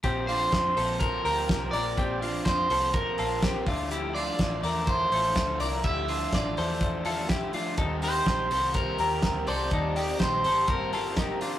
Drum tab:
HH |xoxoxoxo|xoxoxoxo|xoxoxoxo|xoxoxoxo|
SD |--o---o-|--o---o-|--o---o-|--o---o-|
BD |o-o-o-o-|o-o-o-oo|--o-o-o-|o-o-o-o-|

HH |xoxoxoxo|xoxoxoxo|
SD |--o---o-|--o---o-|
BD |o-o-o-o-|o-o-o-o-|